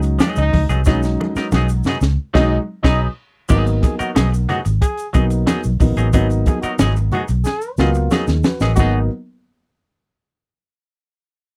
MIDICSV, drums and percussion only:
0, 0, Header, 1, 2, 480
1, 0, Start_track
1, 0, Key_signature, 5, "minor"
1, 0, Tempo, 658617
1, 630, Time_signature, 4, 2, 24, 8
1, 8430, End_track
2, 0, Start_track
2, 0, Title_t, "Drums"
2, 16, Note_on_c, 9, 82, 61
2, 28, Note_on_c, 9, 42, 48
2, 89, Note_off_c, 9, 82, 0
2, 101, Note_off_c, 9, 42, 0
2, 141, Note_on_c, 9, 82, 77
2, 146, Note_on_c, 9, 63, 82
2, 148, Note_on_c, 9, 38, 110
2, 149, Note_on_c, 9, 42, 84
2, 214, Note_off_c, 9, 82, 0
2, 219, Note_off_c, 9, 63, 0
2, 221, Note_off_c, 9, 38, 0
2, 222, Note_off_c, 9, 42, 0
2, 262, Note_on_c, 9, 82, 60
2, 271, Note_on_c, 9, 42, 35
2, 335, Note_off_c, 9, 82, 0
2, 344, Note_off_c, 9, 42, 0
2, 387, Note_on_c, 9, 63, 82
2, 391, Note_on_c, 9, 36, 110
2, 391, Note_on_c, 9, 46, 71
2, 460, Note_off_c, 9, 63, 0
2, 464, Note_off_c, 9, 36, 0
2, 464, Note_off_c, 9, 46, 0
2, 506, Note_on_c, 9, 82, 53
2, 513, Note_on_c, 9, 42, 46
2, 579, Note_off_c, 9, 82, 0
2, 586, Note_off_c, 9, 42, 0
2, 617, Note_on_c, 9, 82, 98
2, 633, Note_on_c, 9, 36, 114
2, 634, Note_on_c, 9, 62, 50
2, 639, Note_on_c, 9, 38, 57
2, 690, Note_off_c, 9, 82, 0
2, 706, Note_off_c, 9, 36, 0
2, 707, Note_off_c, 9, 62, 0
2, 711, Note_off_c, 9, 38, 0
2, 748, Note_on_c, 9, 82, 54
2, 759, Note_on_c, 9, 38, 57
2, 821, Note_off_c, 9, 82, 0
2, 832, Note_off_c, 9, 38, 0
2, 881, Note_on_c, 9, 62, 73
2, 954, Note_off_c, 9, 62, 0
2, 990, Note_on_c, 9, 82, 59
2, 999, Note_on_c, 9, 38, 52
2, 1063, Note_off_c, 9, 82, 0
2, 1072, Note_off_c, 9, 38, 0
2, 1105, Note_on_c, 9, 82, 77
2, 1109, Note_on_c, 9, 63, 89
2, 1117, Note_on_c, 9, 38, 67
2, 1178, Note_off_c, 9, 82, 0
2, 1182, Note_off_c, 9, 63, 0
2, 1190, Note_off_c, 9, 38, 0
2, 1230, Note_on_c, 9, 82, 62
2, 1303, Note_off_c, 9, 82, 0
2, 1336, Note_on_c, 9, 82, 52
2, 1349, Note_on_c, 9, 64, 76
2, 1357, Note_on_c, 9, 38, 76
2, 1409, Note_off_c, 9, 82, 0
2, 1422, Note_off_c, 9, 64, 0
2, 1430, Note_off_c, 9, 38, 0
2, 1465, Note_on_c, 9, 82, 54
2, 1476, Note_on_c, 9, 38, 69
2, 1538, Note_off_c, 9, 82, 0
2, 1548, Note_off_c, 9, 38, 0
2, 1712, Note_on_c, 9, 36, 107
2, 1713, Note_on_c, 9, 49, 88
2, 1717, Note_on_c, 9, 38, 105
2, 1785, Note_off_c, 9, 36, 0
2, 1786, Note_off_c, 9, 49, 0
2, 1790, Note_off_c, 9, 38, 0
2, 2072, Note_on_c, 9, 36, 107
2, 2073, Note_on_c, 9, 49, 83
2, 2076, Note_on_c, 9, 38, 105
2, 2145, Note_off_c, 9, 36, 0
2, 2146, Note_off_c, 9, 49, 0
2, 2149, Note_off_c, 9, 38, 0
2, 2543, Note_on_c, 9, 82, 96
2, 2549, Note_on_c, 9, 49, 89
2, 2552, Note_on_c, 9, 36, 102
2, 2554, Note_on_c, 9, 62, 48
2, 2616, Note_off_c, 9, 82, 0
2, 2622, Note_off_c, 9, 49, 0
2, 2625, Note_off_c, 9, 36, 0
2, 2627, Note_off_c, 9, 62, 0
2, 2672, Note_on_c, 9, 42, 37
2, 2673, Note_on_c, 9, 82, 46
2, 2745, Note_off_c, 9, 42, 0
2, 2746, Note_off_c, 9, 82, 0
2, 2789, Note_on_c, 9, 42, 71
2, 2791, Note_on_c, 9, 36, 95
2, 2798, Note_on_c, 9, 82, 59
2, 2800, Note_on_c, 9, 62, 65
2, 2862, Note_off_c, 9, 42, 0
2, 2864, Note_off_c, 9, 36, 0
2, 2871, Note_off_c, 9, 82, 0
2, 2873, Note_off_c, 9, 62, 0
2, 2908, Note_on_c, 9, 42, 41
2, 2917, Note_on_c, 9, 82, 58
2, 2981, Note_off_c, 9, 42, 0
2, 2990, Note_off_c, 9, 82, 0
2, 3031, Note_on_c, 9, 42, 80
2, 3032, Note_on_c, 9, 38, 117
2, 3033, Note_on_c, 9, 63, 85
2, 3039, Note_on_c, 9, 82, 84
2, 3104, Note_off_c, 9, 42, 0
2, 3105, Note_off_c, 9, 38, 0
2, 3106, Note_off_c, 9, 63, 0
2, 3112, Note_off_c, 9, 82, 0
2, 3161, Note_on_c, 9, 82, 58
2, 3234, Note_off_c, 9, 82, 0
2, 3273, Note_on_c, 9, 42, 72
2, 3277, Note_on_c, 9, 64, 76
2, 3278, Note_on_c, 9, 38, 34
2, 3346, Note_off_c, 9, 42, 0
2, 3349, Note_off_c, 9, 64, 0
2, 3351, Note_off_c, 9, 38, 0
2, 3391, Note_on_c, 9, 42, 47
2, 3393, Note_on_c, 9, 82, 60
2, 3464, Note_off_c, 9, 42, 0
2, 3466, Note_off_c, 9, 82, 0
2, 3511, Note_on_c, 9, 36, 81
2, 3511, Note_on_c, 9, 42, 83
2, 3520, Note_on_c, 9, 82, 73
2, 3525, Note_on_c, 9, 62, 36
2, 3584, Note_off_c, 9, 36, 0
2, 3584, Note_off_c, 9, 42, 0
2, 3593, Note_off_c, 9, 82, 0
2, 3598, Note_off_c, 9, 62, 0
2, 3626, Note_on_c, 9, 42, 37
2, 3636, Note_on_c, 9, 82, 55
2, 3699, Note_off_c, 9, 42, 0
2, 3709, Note_off_c, 9, 82, 0
2, 3746, Note_on_c, 9, 82, 49
2, 3748, Note_on_c, 9, 42, 70
2, 3751, Note_on_c, 9, 36, 93
2, 3819, Note_off_c, 9, 82, 0
2, 3821, Note_off_c, 9, 42, 0
2, 3824, Note_off_c, 9, 36, 0
2, 3865, Note_on_c, 9, 42, 46
2, 3868, Note_on_c, 9, 82, 56
2, 3938, Note_off_c, 9, 42, 0
2, 3940, Note_off_c, 9, 82, 0
2, 3987, Note_on_c, 9, 38, 112
2, 3987, Note_on_c, 9, 42, 92
2, 3993, Note_on_c, 9, 82, 78
2, 3994, Note_on_c, 9, 63, 84
2, 4059, Note_off_c, 9, 38, 0
2, 4060, Note_off_c, 9, 42, 0
2, 4066, Note_off_c, 9, 82, 0
2, 4067, Note_off_c, 9, 63, 0
2, 4107, Note_on_c, 9, 82, 59
2, 4108, Note_on_c, 9, 42, 31
2, 4180, Note_off_c, 9, 42, 0
2, 4180, Note_off_c, 9, 82, 0
2, 4227, Note_on_c, 9, 46, 74
2, 4230, Note_on_c, 9, 36, 112
2, 4231, Note_on_c, 9, 82, 62
2, 4236, Note_on_c, 9, 63, 81
2, 4300, Note_off_c, 9, 46, 0
2, 4303, Note_off_c, 9, 36, 0
2, 4304, Note_off_c, 9, 82, 0
2, 4309, Note_off_c, 9, 63, 0
2, 4349, Note_on_c, 9, 42, 51
2, 4358, Note_on_c, 9, 82, 51
2, 4422, Note_off_c, 9, 42, 0
2, 4430, Note_off_c, 9, 82, 0
2, 4468, Note_on_c, 9, 82, 105
2, 4469, Note_on_c, 9, 42, 93
2, 4472, Note_on_c, 9, 36, 106
2, 4478, Note_on_c, 9, 62, 44
2, 4541, Note_off_c, 9, 82, 0
2, 4542, Note_off_c, 9, 42, 0
2, 4545, Note_off_c, 9, 36, 0
2, 4551, Note_off_c, 9, 62, 0
2, 4591, Note_on_c, 9, 42, 36
2, 4598, Note_on_c, 9, 82, 47
2, 4664, Note_off_c, 9, 42, 0
2, 4671, Note_off_c, 9, 82, 0
2, 4708, Note_on_c, 9, 42, 62
2, 4711, Note_on_c, 9, 36, 99
2, 4715, Note_on_c, 9, 82, 59
2, 4725, Note_on_c, 9, 62, 72
2, 4781, Note_off_c, 9, 42, 0
2, 4784, Note_off_c, 9, 36, 0
2, 4788, Note_off_c, 9, 82, 0
2, 4797, Note_off_c, 9, 62, 0
2, 4828, Note_on_c, 9, 42, 44
2, 4834, Note_on_c, 9, 82, 58
2, 4901, Note_off_c, 9, 42, 0
2, 4907, Note_off_c, 9, 82, 0
2, 4948, Note_on_c, 9, 82, 86
2, 4949, Note_on_c, 9, 63, 101
2, 4950, Note_on_c, 9, 42, 75
2, 4951, Note_on_c, 9, 38, 109
2, 5021, Note_off_c, 9, 82, 0
2, 5022, Note_off_c, 9, 63, 0
2, 5023, Note_off_c, 9, 42, 0
2, 5024, Note_off_c, 9, 38, 0
2, 5073, Note_on_c, 9, 82, 57
2, 5146, Note_off_c, 9, 82, 0
2, 5186, Note_on_c, 9, 64, 76
2, 5192, Note_on_c, 9, 42, 72
2, 5259, Note_off_c, 9, 64, 0
2, 5265, Note_off_c, 9, 42, 0
2, 5306, Note_on_c, 9, 82, 53
2, 5317, Note_on_c, 9, 42, 49
2, 5378, Note_off_c, 9, 82, 0
2, 5390, Note_off_c, 9, 42, 0
2, 5426, Note_on_c, 9, 82, 76
2, 5440, Note_on_c, 9, 38, 55
2, 5442, Note_on_c, 9, 62, 34
2, 5499, Note_off_c, 9, 82, 0
2, 5513, Note_off_c, 9, 38, 0
2, 5515, Note_off_c, 9, 62, 0
2, 5548, Note_on_c, 9, 82, 57
2, 5621, Note_off_c, 9, 82, 0
2, 5667, Note_on_c, 9, 82, 50
2, 5678, Note_on_c, 9, 38, 76
2, 5740, Note_off_c, 9, 82, 0
2, 5751, Note_off_c, 9, 38, 0
2, 5789, Note_on_c, 9, 82, 55
2, 5862, Note_off_c, 9, 82, 0
2, 5909, Note_on_c, 9, 82, 72
2, 5914, Note_on_c, 9, 63, 86
2, 5918, Note_on_c, 9, 38, 89
2, 5982, Note_off_c, 9, 82, 0
2, 5987, Note_off_c, 9, 63, 0
2, 5991, Note_off_c, 9, 38, 0
2, 6028, Note_on_c, 9, 82, 55
2, 6036, Note_on_c, 9, 38, 70
2, 6101, Note_off_c, 9, 82, 0
2, 6109, Note_off_c, 9, 38, 0
2, 6148, Note_on_c, 9, 82, 56
2, 6150, Note_on_c, 9, 63, 75
2, 6154, Note_on_c, 9, 38, 108
2, 6221, Note_off_c, 9, 82, 0
2, 6223, Note_off_c, 9, 63, 0
2, 6227, Note_off_c, 9, 38, 0
2, 6268, Note_on_c, 9, 82, 53
2, 6274, Note_on_c, 9, 38, 88
2, 6341, Note_off_c, 9, 82, 0
2, 6347, Note_off_c, 9, 38, 0
2, 6387, Note_on_c, 9, 82, 85
2, 6388, Note_on_c, 9, 62, 77
2, 6392, Note_on_c, 9, 36, 100
2, 6392, Note_on_c, 9, 49, 84
2, 6459, Note_off_c, 9, 82, 0
2, 6461, Note_off_c, 9, 62, 0
2, 6465, Note_off_c, 9, 36, 0
2, 6465, Note_off_c, 9, 49, 0
2, 8430, End_track
0, 0, End_of_file